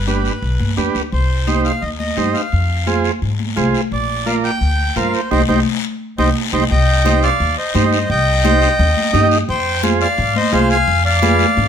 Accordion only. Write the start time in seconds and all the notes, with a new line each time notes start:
0.08 B4
1.12 C5
1.65 F5
1.82 D#5
1.99 D#5
2.34 F5
3.93 D5
4.27 F5
4.45 G5
4.97 F5
5.14 C5
5.32 C5 D#5 G5
5.49 C5 D#5 G5
6.18 C5 D#5 G5
6.53 C5 D#5 G5
6.71 D#5 G5
7.23 D5 F5
7.58 C5 D#5
7.93 C5 D#5
8.10 D#5 G5
9.49 C5 G5
10.01 D5 F5
10.36 C5 D#5
10.53 C5 F5
10.71 F5 G#5
11.05 D5 F5